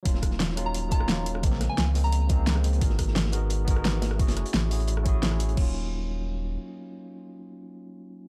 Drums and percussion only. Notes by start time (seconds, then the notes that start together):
0.05 kick, closed hi-hat
0.14 snare
0.22 kick, cross-stick, closed hi-hat
0.31 snare
0.39 snare, closed hi-hat
0.49 snare
0.57 cross-stick, closed hi-hat
0.74 closed hi-hat
0.91 kick, closed hi-hat
1.00 cross-stick
1.08 snare, closed hi-hat
1.26 closed hi-hat
1.35 cross-stick
1.43 kick, closed hi-hat
1.52 snare
1.60 cross-stick, snare, closed hi-hat
1.77 snare, closed hi-hat
1.95 closed hi-hat, open hi-hat
2.04 closed hi-hat
2.12 closed hi-hat
2.29 kick, closed hi-hat
2.47 snare, closed hi-hat
2.56 cross-stick, snare
2.64 closed hi-hat
2.73 closed hi-hat
2.81 kick, closed hi-hat
2.90 snare
2.99 kick, cross-stick, closed hi-hat
3.08 snare
3.15 snare, closed hi-hat
3.25 snare
3.32 cross-stick, closed hi-hat
3.50 closed hi-hat
3.68 kick, closed hi-hat
3.76 cross-stick
3.85 snare, closed hi-hat
4.02 snare, closed hi-hat
4.11 cross-stick
4.19 kick, closed hi-hat
4.28 snare, closed hi-hat
4.37 cross-stick, closed hi-hat
4.46 closed hi-hat
4.54 snare, closed hi-hat
4.71 closed hi-hat, open hi-hat
4.80 closed hi-hat
4.88 closed hi-hat
4.97 cross-stick
5.06 kick, closed hi-hat
5.23 snare, closed hi-hat
5.31 cross-stick, snare
5.40 closed hi-hat
5.49 closed hi-hat
5.57 kick, crash